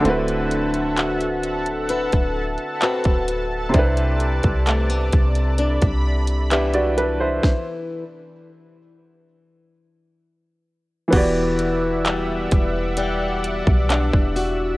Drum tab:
CC |----------------|----------------|----------------|x---------------|
HH |xxxxxxxxxx-xxxx-|xxxxxxxxxx-xxxx-|----------------|x-x-x-x-x-x-x-o-|
CP |----x-------x---|----x-------x---|----------------|----x-------x---|
SD |----------------|----------------|o---------------|----------------|
BD |---------o---o--|o--o--o--o------|o---------------|o-----o----o-o--|